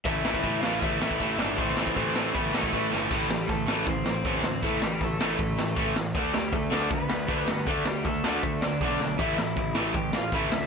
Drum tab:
CC |----------------|----------------|x---------------|----------------|
HH |o---o---o---o---|o---o---o---o---|----o---o---o---|o---o---o---o---|
SD |--o---o---o---o-|--o---o---o---o-|--o---o---o---o-|--o---o---o---o-|
BD |o--oo---o--oo---|o--oo---o--oo---|o---o---o---o---|o---o---o---o---|

CC |----------------|----------------|----------------|
HH |o---o---o---o---|o---o---o---o---|o---o---o---o---|
SD |--o---o---o---o-|--o---o---o---o-|--o---o---o---o-|
BD |o---o---o---o---|o---o---o---o---|o---o---o---o---|